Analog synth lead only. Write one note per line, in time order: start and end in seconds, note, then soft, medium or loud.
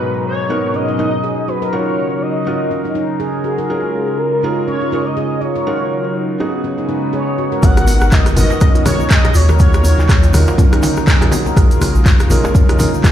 0.00 0.23 B4 loud
0.26 0.76 C#5 loud
0.75 1.50 D#5 loud
1.48 1.75 B4 medium
1.73 2.23 C#5 loud
2.22 3.20 D#5 loud
3.45 4.19 G#4 medium
4.18 4.66 A#4 loud
4.67 5.07 C#5 loud
5.05 5.42 D#5 loud
5.40 6.39 C#5 loud
7.14 7.64 C#5 loud
7.63 8.14 F#5 loud
8.12 8.36 D#5 loud
8.37 8.83 D#5 loud
8.86 9.09 C#5 loud
9.11 9.37 D#5 loud
9.35 9.59 C#5 medium
9.60 10.54 C#5 loud